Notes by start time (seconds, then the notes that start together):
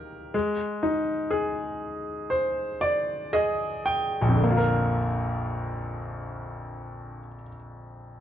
Already playing: D#3 G4 A#4
0.34 G#3
0.83 D#4
1.30 G#4
2.30 C5
2.81 D5
3.33 G#4 D#5
3.86 G5
4.22 A#1
4.29 F2
4.36 D3
4.43 A#3
4.50 F4
4.57 A#4